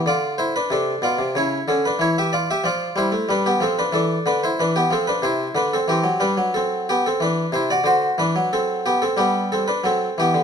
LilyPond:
<<
  \new Staff \with { instrumentName = "Harpsichord" } { \time 4/4 \key d \dorian \tempo 4 = 92 <f' d''>8 <e' c''>16 <d' b'>16 <d' a'>8 <f' d''>8 <e' cis''>8 <cis' a'>16 <d' b'>16 <e' cis''>16 <g' e''>16 <f' d''>16 <g' e''>16 | <f' d''>8 <e' c''>8 <d' b'>16 <b g'>16 <c' a'>16 <d' b'>16 <d' a'>8 <d' b'>16 <e' c''>16 <d' b'>16 <b g'>16 <c' a'>16 <d' b'>16 | \key c \lydian <e' c''>8 <d' b'>16 <c' a'>16 <c' g'>8 <d' b'>8 <c' a'>8 <b g'>16 <c' a'>16 <d' b'>8 <e' c''>16 <fis' d''>16 | <fis' c''>8 <d' b'>8 <c' a'>8 <b g'>16 <c' a'>16 <b g'>8 <c' a'>16 <d' b'>16 <c' a'>8 <b g'>8 | }
  \new Staff \with { instrumentName = "Harpsichord" } { \clef bass \time 4/4 \key d \dorian d4 c8 b,16 c16 cis8 d8 e4 | f8 g16 a16 g8 f8 e8 d8 e8 f8 | \key c \lydian c8 d8 e16 fis16 g16 fis4~ fis16 e8 c8 | d8 e16 fis4~ fis16 g4 fis8 e16 d16 | }
>>